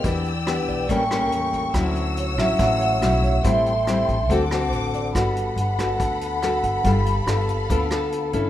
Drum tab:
HH |xxxxxxxx|xxxxxxxx|xxxxxxxx|xxxxxxxx|
SD |--r--r--|r--r--r-|--r--r--|r--r--r-|
BD |o--oo--o|o--oo--o|o--oo--o|o--oo--o|

HH |xxxxxxxx|
SD |--r--r--|
BD |o--oo--o|